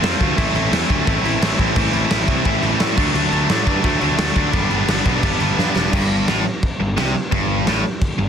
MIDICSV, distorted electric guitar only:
0, 0, Header, 1, 3, 480
1, 0, Start_track
1, 0, Key_signature, 1, "major"
1, 0, Tempo, 347021
1, 519, Time_signature, 4, 2, 24, 8
1, 11464, End_track
2, 0, Start_track
2, 0, Title_t, "Distorted electric guitar"
2, 0, Program_c, 0, 30
2, 20, Note_on_c, 0, 53, 100
2, 31, Note_on_c, 0, 57, 87
2, 33, Note_on_c, 0, 60, 97
2, 39, Note_on_c, 0, 65, 102
2, 247, Note_off_c, 0, 53, 0
2, 263, Note_on_c, 0, 53, 87
2, 264, Note_off_c, 0, 65, 0
2, 265, Note_off_c, 0, 57, 0
2, 269, Note_off_c, 0, 60, 0
2, 271, Note_on_c, 0, 57, 88
2, 274, Note_on_c, 0, 60, 88
2, 281, Note_on_c, 0, 65, 93
2, 496, Note_off_c, 0, 53, 0
2, 498, Note_on_c, 0, 45, 100
2, 501, Note_off_c, 0, 57, 0
2, 504, Note_on_c, 0, 52, 103
2, 505, Note_off_c, 0, 65, 0
2, 507, Note_on_c, 0, 57, 113
2, 509, Note_off_c, 0, 60, 0
2, 515, Note_on_c, 0, 60, 102
2, 515, Note_on_c, 0, 64, 123
2, 738, Note_off_c, 0, 45, 0
2, 740, Note_off_c, 0, 52, 0
2, 743, Note_on_c, 0, 45, 93
2, 745, Note_on_c, 0, 52, 93
2, 753, Note_off_c, 0, 57, 0
2, 758, Note_on_c, 0, 57, 93
2, 759, Note_off_c, 0, 60, 0
2, 762, Note_off_c, 0, 64, 0
2, 764, Note_on_c, 0, 60, 93
2, 768, Note_on_c, 0, 64, 102
2, 983, Note_off_c, 0, 45, 0
2, 989, Note_on_c, 0, 45, 86
2, 991, Note_off_c, 0, 52, 0
2, 997, Note_on_c, 0, 52, 87
2, 1001, Note_off_c, 0, 57, 0
2, 1006, Note_off_c, 0, 60, 0
2, 1006, Note_on_c, 0, 57, 91
2, 1007, Note_off_c, 0, 64, 0
2, 1012, Note_on_c, 0, 60, 93
2, 1012, Note_on_c, 0, 64, 93
2, 1214, Note_off_c, 0, 45, 0
2, 1221, Note_off_c, 0, 52, 0
2, 1230, Note_off_c, 0, 60, 0
2, 1231, Note_on_c, 0, 45, 86
2, 1234, Note_off_c, 0, 64, 0
2, 1237, Note_on_c, 0, 52, 92
2, 1238, Note_off_c, 0, 57, 0
2, 1244, Note_on_c, 0, 57, 100
2, 1246, Note_on_c, 0, 60, 97
2, 1250, Note_on_c, 0, 64, 97
2, 1453, Note_off_c, 0, 45, 0
2, 1460, Note_off_c, 0, 52, 0
2, 1470, Note_on_c, 0, 45, 104
2, 1471, Note_off_c, 0, 64, 0
2, 1472, Note_off_c, 0, 60, 0
2, 1473, Note_off_c, 0, 57, 0
2, 1477, Note_on_c, 0, 52, 99
2, 1479, Note_on_c, 0, 57, 104
2, 1488, Note_on_c, 0, 60, 120
2, 1488, Note_on_c, 0, 64, 109
2, 1701, Note_off_c, 0, 45, 0
2, 1707, Note_off_c, 0, 52, 0
2, 1716, Note_off_c, 0, 60, 0
2, 1718, Note_on_c, 0, 45, 82
2, 1719, Note_off_c, 0, 57, 0
2, 1720, Note_off_c, 0, 64, 0
2, 1723, Note_on_c, 0, 52, 79
2, 1725, Note_on_c, 0, 57, 91
2, 1732, Note_on_c, 0, 60, 91
2, 1736, Note_on_c, 0, 64, 100
2, 1935, Note_off_c, 0, 45, 0
2, 1944, Note_off_c, 0, 52, 0
2, 1951, Note_on_c, 0, 45, 99
2, 1953, Note_off_c, 0, 60, 0
2, 1958, Note_off_c, 0, 57, 0
2, 1958, Note_off_c, 0, 64, 0
2, 1961, Note_on_c, 0, 52, 91
2, 1963, Note_on_c, 0, 57, 102
2, 1969, Note_on_c, 0, 60, 105
2, 1974, Note_on_c, 0, 64, 108
2, 2174, Note_off_c, 0, 45, 0
2, 2179, Note_off_c, 0, 52, 0
2, 2190, Note_on_c, 0, 45, 89
2, 2193, Note_off_c, 0, 64, 0
2, 2195, Note_off_c, 0, 60, 0
2, 2196, Note_off_c, 0, 57, 0
2, 2196, Note_on_c, 0, 52, 86
2, 2202, Note_on_c, 0, 57, 86
2, 2210, Note_on_c, 0, 64, 96
2, 2211, Note_on_c, 0, 60, 93
2, 2405, Note_off_c, 0, 45, 0
2, 2411, Note_off_c, 0, 52, 0
2, 2421, Note_off_c, 0, 60, 0
2, 2421, Note_on_c, 0, 45, 111
2, 2423, Note_off_c, 0, 64, 0
2, 2428, Note_on_c, 0, 52, 111
2, 2430, Note_off_c, 0, 57, 0
2, 2436, Note_on_c, 0, 57, 120
2, 2438, Note_on_c, 0, 60, 113
2, 2440, Note_on_c, 0, 64, 113
2, 2639, Note_off_c, 0, 45, 0
2, 2648, Note_off_c, 0, 52, 0
2, 2656, Note_on_c, 0, 45, 91
2, 2659, Note_off_c, 0, 60, 0
2, 2659, Note_off_c, 0, 64, 0
2, 2661, Note_off_c, 0, 57, 0
2, 2665, Note_on_c, 0, 52, 101
2, 2667, Note_on_c, 0, 57, 90
2, 2675, Note_on_c, 0, 64, 96
2, 2676, Note_on_c, 0, 60, 108
2, 2891, Note_off_c, 0, 45, 0
2, 2892, Note_off_c, 0, 52, 0
2, 2905, Note_off_c, 0, 60, 0
2, 2907, Note_on_c, 0, 45, 86
2, 2908, Note_on_c, 0, 52, 95
2, 2910, Note_off_c, 0, 57, 0
2, 2910, Note_off_c, 0, 64, 0
2, 2916, Note_on_c, 0, 57, 96
2, 2922, Note_on_c, 0, 60, 101
2, 2926, Note_on_c, 0, 64, 100
2, 3129, Note_off_c, 0, 45, 0
2, 3135, Note_off_c, 0, 52, 0
2, 3145, Note_off_c, 0, 60, 0
2, 3145, Note_on_c, 0, 45, 91
2, 3148, Note_off_c, 0, 64, 0
2, 3151, Note_off_c, 0, 57, 0
2, 3152, Note_on_c, 0, 52, 88
2, 3157, Note_on_c, 0, 57, 106
2, 3161, Note_on_c, 0, 60, 101
2, 3165, Note_on_c, 0, 64, 99
2, 3371, Note_off_c, 0, 45, 0
2, 3379, Note_off_c, 0, 52, 0
2, 3380, Note_off_c, 0, 57, 0
2, 3384, Note_off_c, 0, 60, 0
2, 3388, Note_on_c, 0, 45, 94
2, 3391, Note_off_c, 0, 64, 0
2, 3395, Note_on_c, 0, 52, 102
2, 3396, Note_on_c, 0, 57, 108
2, 3400, Note_on_c, 0, 60, 108
2, 3408, Note_on_c, 0, 64, 114
2, 3600, Note_off_c, 0, 45, 0
2, 3609, Note_off_c, 0, 52, 0
2, 3617, Note_on_c, 0, 45, 94
2, 3618, Note_off_c, 0, 57, 0
2, 3622, Note_off_c, 0, 60, 0
2, 3626, Note_on_c, 0, 52, 95
2, 3629, Note_off_c, 0, 64, 0
2, 3635, Note_on_c, 0, 57, 95
2, 3639, Note_on_c, 0, 60, 92
2, 3646, Note_on_c, 0, 64, 94
2, 3851, Note_off_c, 0, 52, 0
2, 3853, Note_off_c, 0, 45, 0
2, 3859, Note_off_c, 0, 57, 0
2, 3866, Note_off_c, 0, 60, 0
2, 3867, Note_on_c, 0, 52, 92
2, 3870, Note_on_c, 0, 45, 87
2, 3873, Note_off_c, 0, 64, 0
2, 3875, Note_on_c, 0, 57, 91
2, 3882, Note_on_c, 0, 60, 102
2, 3890, Note_on_c, 0, 64, 93
2, 4089, Note_off_c, 0, 52, 0
2, 4094, Note_on_c, 0, 50, 99
2, 4095, Note_off_c, 0, 57, 0
2, 4100, Note_off_c, 0, 45, 0
2, 4106, Note_off_c, 0, 60, 0
2, 4106, Note_on_c, 0, 54, 107
2, 4108, Note_off_c, 0, 64, 0
2, 4112, Note_on_c, 0, 57, 97
2, 4113, Note_on_c, 0, 62, 102
2, 4324, Note_off_c, 0, 50, 0
2, 4328, Note_off_c, 0, 54, 0
2, 4331, Note_off_c, 0, 57, 0
2, 4341, Note_on_c, 0, 50, 107
2, 4344, Note_on_c, 0, 54, 118
2, 4348, Note_off_c, 0, 62, 0
2, 4348, Note_on_c, 0, 57, 121
2, 4353, Note_on_c, 0, 62, 125
2, 4558, Note_off_c, 0, 50, 0
2, 4565, Note_off_c, 0, 54, 0
2, 4569, Note_off_c, 0, 57, 0
2, 4575, Note_on_c, 0, 50, 89
2, 4582, Note_on_c, 0, 54, 102
2, 4585, Note_on_c, 0, 57, 98
2, 4590, Note_off_c, 0, 62, 0
2, 4596, Note_on_c, 0, 62, 96
2, 4810, Note_off_c, 0, 50, 0
2, 4817, Note_off_c, 0, 54, 0
2, 4821, Note_off_c, 0, 57, 0
2, 4826, Note_on_c, 0, 50, 92
2, 4833, Note_on_c, 0, 54, 85
2, 4837, Note_on_c, 0, 57, 106
2, 4842, Note_off_c, 0, 62, 0
2, 4848, Note_on_c, 0, 62, 98
2, 5040, Note_off_c, 0, 50, 0
2, 5046, Note_off_c, 0, 54, 0
2, 5050, Note_off_c, 0, 57, 0
2, 5057, Note_on_c, 0, 50, 96
2, 5062, Note_on_c, 0, 54, 93
2, 5067, Note_on_c, 0, 57, 101
2, 5072, Note_off_c, 0, 62, 0
2, 5078, Note_on_c, 0, 62, 107
2, 5275, Note_off_c, 0, 50, 0
2, 5279, Note_off_c, 0, 54, 0
2, 5286, Note_off_c, 0, 57, 0
2, 5291, Note_on_c, 0, 50, 95
2, 5295, Note_on_c, 0, 54, 102
2, 5303, Note_on_c, 0, 57, 111
2, 5305, Note_off_c, 0, 62, 0
2, 5310, Note_on_c, 0, 62, 119
2, 5507, Note_off_c, 0, 50, 0
2, 5517, Note_off_c, 0, 54, 0
2, 5520, Note_off_c, 0, 57, 0
2, 5524, Note_on_c, 0, 50, 90
2, 5533, Note_on_c, 0, 54, 96
2, 5537, Note_on_c, 0, 57, 92
2, 5540, Note_off_c, 0, 62, 0
2, 5546, Note_on_c, 0, 62, 98
2, 5757, Note_off_c, 0, 50, 0
2, 5763, Note_off_c, 0, 54, 0
2, 5766, Note_off_c, 0, 57, 0
2, 5774, Note_on_c, 0, 50, 91
2, 5779, Note_off_c, 0, 62, 0
2, 5780, Note_on_c, 0, 54, 97
2, 5782, Note_on_c, 0, 57, 107
2, 5785, Note_on_c, 0, 62, 106
2, 5996, Note_off_c, 0, 50, 0
2, 6001, Note_off_c, 0, 54, 0
2, 6009, Note_off_c, 0, 57, 0
2, 6013, Note_on_c, 0, 50, 84
2, 6017, Note_on_c, 0, 54, 83
2, 6022, Note_off_c, 0, 62, 0
2, 6026, Note_on_c, 0, 57, 90
2, 6027, Note_on_c, 0, 62, 95
2, 6235, Note_off_c, 0, 50, 0
2, 6247, Note_on_c, 0, 43, 118
2, 6250, Note_off_c, 0, 54, 0
2, 6251, Note_on_c, 0, 50, 112
2, 6254, Note_off_c, 0, 57, 0
2, 6255, Note_on_c, 0, 55, 109
2, 6259, Note_on_c, 0, 59, 116
2, 6262, Note_off_c, 0, 62, 0
2, 6267, Note_on_c, 0, 62, 121
2, 6470, Note_off_c, 0, 43, 0
2, 6478, Note_off_c, 0, 50, 0
2, 6486, Note_on_c, 0, 43, 89
2, 6488, Note_off_c, 0, 55, 0
2, 6490, Note_off_c, 0, 59, 0
2, 6495, Note_on_c, 0, 50, 91
2, 6497, Note_off_c, 0, 62, 0
2, 6505, Note_on_c, 0, 55, 90
2, 6506, Note_on_c, 0, 59, 105
2, 6513, Note_on_c, 0, 62, 99
2, 6722, Note_off_c, 0, 43, 0
2, 6729, Note_off_c, 0, 50, 0
2, 6736, Note_off_c, 0, 55, 0
2, 6739, Note_off_c, 0, 59, 0
2, 6739, Note_on_c, 0, 43, 92
2, 6745, Note_off_c, 0, 62, 0
2, 6745, Note_on_c, 0, 50, 88
2, 6753, Note_on_c, 0, 55, 98
2, 6755, Note_on_c, 0, 59, 99
2, 6762, Note_on_c, 0, 62, 102
2, 6969, Note_off_c, 0, 43, 0
2, 6973, Note_off_c, 0, 50, 0
2, 6981, Note_off_c, 0, 55, 0
2, 6982, Note_off_c, 0, 59, 0
2, 6986, Note_on_c, 0, 43, 93
2, 6989, Note_on_c, 0, 50, 94
2, 6992, Note_off_c, 0, 62, 0
2, 6997, Note_on_c, 0, 55, 91
2, 6998, Note_on_c, 0, 59, 97
2, 7009, Note_on_c, 0, 62, 109
2, 7215, Note_off_c, 0, 43, 0
2, 7218, Note_off_c, 0, 50, 0
2, 7225, Note_off_c, 0, 55, 0
2, 7232, Note_off_c, 0, 59, 0
2, 7232, Note_on_c, 0, 43, 109
2, 7235, Note_on_c, 0, 50, 112
2, 7237, Note_off_c, 0, 62, 0
2, 7241, Note_on_c, 0, 55, 109
2, 7249, Note_on_c, 0, 59, 104
2, 7254, Note_on_c, 0, 62, 116
2, 7449, Note_off_c, 0, 43, 0
2, 7455, Note_off_c, 0, 50, 0
2, 7460, Note_off_c, 0, 55, 0
2, 7465, Note_on_c, 0, 43, 94
2, 7471, Note_off_c, 0, 59, 0
2, 7471, Note_on_c, 0, 50, 88
2, 7472, Note_off_c, 0, 62, 0
2, 7477, Note_on_c, 0, 55, 97
2, 7488, Note_on_c, 0, 59, 99
2, 7489, Note_on_c, 0, 62, 97
2, 7690, Note_off_c, 0, 43, 0
2, 7692, Note_off_c, 0, 50, 0
2, 7702, Note_off_c, 0, 55, 0
2, 7707, Note_on_c, 0, 43, 100
2, 7708, Note_on_c, 0, 50, 90
2, 7709, Note_off_c, 0, 59, 0
2, 7713, Note_off_c, 0, 62, 0
2, 7719, Note_on_c, 0, 55, 101
2, 7726, Note_on_c, 0, 59, 93
2, 7730, Note_on_c, 0, 62, 115
2, 7939, Note_off_c, 0, 43, 0
2, 7943, Note_off_c, 0, 50, 0
2, 7954, Note_off_c, 0, 55, 0
2, 7955, Note_on_c, 0, 43, 88
2, 7959, Note_on_c, 0, 50, 78
2, 7960, Note_off_c, 0, 59, 0
2, 7967, Note_off_c, 0, 62, 0
2, 7970, Note_on_c, 0, 55, 99
2, 7976, Note_on_c, 0, 59, 90
2, 7983, Note_on_c, 0, 62, 94
2, 8176, Note_off_c, 0, 43, 0
2, 8186, Note_off_c, 0, 50, 0
2, 8191, Note_off_c, 0, 55, 0
2, 8193, Note_on_c, 0, 43, 116
2, 8194, Note_off_c, 0, 59, 0
2, 8198, Note_off_c, 0, 62, 0
2, 8670, Note_off_c, 0, 43, 0
2, 8675, Note_on_c, 0, 45, 108
2, 8911, Note_off_c, 0, 45, 0
2, 9407, Note_on_c, 0, 43, 75
2, 9596, Note_off_c, 0, 43, 0
2, 9641, Note_on_c, 0, 48, 112
2, 9874, Note_off_c, 0, 48, 0
2, 10120, Note_on_c, 0, 43, 110
2, 10594, Note_off_c, 0, 43, 0
2, 10597, Note_on_c, 0, 45, 105
2, 10832, Note_off_c, 0, 45, 0
2, 11321, Note_on_c, 0, 43, 77
2, 11464, Note_off_c, 0, 43, 0
2, 11464, End_track
3, 0, Start_track
3, 0, Title_t, "Muted distorted electric guitar strokes"
3, 9882, Note_on_c, 9, 29, 57
3, 10020, Note_off_c, 9, 29, 0
3, 11464, End_track
0, 0, End_of_file